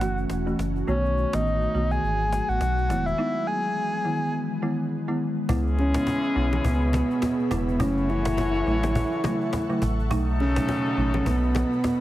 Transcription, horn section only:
5.49 7.47 E3 medium
5.49 7.47 G#3 medium
5.49 7.47 C#4 medium
5.49 7.47 G#4 loud
7.80 9.78 A3 medium
7.80 9.78 C#4 medium
7.80 9.78 F#4 loud
7.80 9.78 C#5 loud
10.11 11.80 F#3 medium
10.11 11.80 A3 medium
10.11 11.80 D#4 loud
10.11 11.80 A4 loud

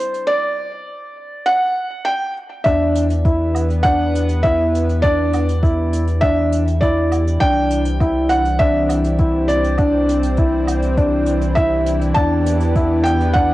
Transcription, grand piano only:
2.66 3.04 D4 loud
3.25 3.63 E4 medium
3.85 4.23 D4 medium
4.44 4.82 E4 medium
5.04 5.41 D4 loud
5.63 6.01 E4 medium
6.22 6.60 D4 medium
6.82 7.20 E4 medium
7.41 7.79 D4 loud
8.01 8.39 E4 medium
8.60 8.98 D4 medium
9.19 9.57 E4 medium
9.78 10.16 D4 medium
10.38 10.76 E4 medium
10.97 11.35 D4 medium
11.57 11.95 E4 medium
12.16 12.54 D4 medium
12.76 13.14 E4 medium
13.35 13.54 D4 medium

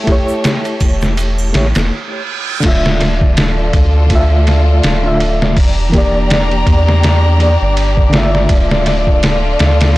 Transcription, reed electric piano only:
0.04 1.48 A3 medium
0.04 1.50 E4 medium
0.09 1.51 G4 medium
0.09 1.53 C#5 medium
1.53 1.64 A3 medium
1.53 1.65 E4 medium
1.53 1.65 G4 medium
1.57 1.66 C#5 medium
2.60 3.72 D3 loud
2.60 3.73 A3 medium
2.66 3.75 F4 medium
2.66 3.76 E5 loud
4.07 4.98 D3 medium
4.07 4.99 A3 medium
4.13 5.01 F4 medium
4.13 5.02 E5 loud
5.03 5.54 D3 loud
5.03 5.55 A3 medium
5.03 5.55 F4 medium
5.07 5.56 E5 loud
5.90 7.34 E3 medium
5.90 7.35 A#3 medium
5.95 7.37 G4 medium
5.95 7.38 D5 loud
7.38 7.49 E3 medium
7.38 7.50 A#3 medium
7.38 7.51 G4 medium
7.43 7.52 D5 medium
8.10 9.90 D3 medium
8.10 9.92 A3 medium
8.15 9.93 F4 medium
8.15 9.94 E5 loud
9.93 9.98 D3 medium

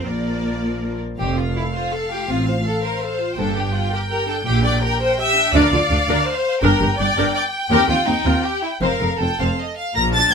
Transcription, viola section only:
0.06 0.98 F3 soft
0.06 0.98 A#4 soft
1.18 2.24 A3 medium
1.18 1.36 C4 medium
1.37 1.55 F4 soft
1.56 1.74 A4 soft
1.74 1.92 C5 soft
1.92 2.10 A4 soft
2.10 2.28 F4 soft
2.28 2.45 C4 medium
2.47 2.65 F4 medium
2.65 2.83 A4 medium
2.84 3.01 C5 soft
3.01 3.19 A4 medium
3.20 3.38 F4 medium
3.39 3.55 A#3 medium
3.39 3.56 D4 medium
3.57 3.74 D4 medium
3.75 3.92 G4 medium
3.92 4.09 A#4 medium
4.10 4.28 G4 medium
4.28 4.46 D4 medium
4.46 4.63 A#3 medium
4.64 4.82 D4 medium
4.82 5.00 G4 medium
5.00 5.18 A#4 medium
5.18 5.36 G4 medium
5.36 5.53 D4 medium
5.54 5.71 D4 medium
5.54 5.71 A#4 medium
5.72 5.79 D4 medium
5.72 5.80 F4 medium
5.91 5.98 D4 medium
6.08 6.25 D4 medium
6.08 6.25 A#4 medium
6.63 6.79 D4 medium
6.63 6.79 A#4 medium
6.81 6.88 D4 soft
6.81 6.88 G4 medium
6.99 7.06 D4 medium
7.17 7.33 D4 medium
7.17 7.33 A#4 medium
7.70 7.87 C4 medium
7.70 7.87 A#4 medium
7.88 7.96 C4 medium
7.88 7.96 G4 medium
8.06 8.14 C4 medium
8.06 8.14 D#4 soft
8.24 8.42 C4 medium
8.24 8.42 A#4 medium
8.81 8.99 C4 medium
8.81 8.99 C5 medium
9.00 9.08 C4 soft
9.00 9.08 A4 soft
9.20 9.28 C4 soft
9.20 9.28 F4 soft
9.39 9.57 C4 medium
9.39 9.56 C5 medium
9.95 10.13 F4 medium
9.95 10.12 A#4 medium
10.13 10.32 D4 medium
10.13 10.32 D5 medium

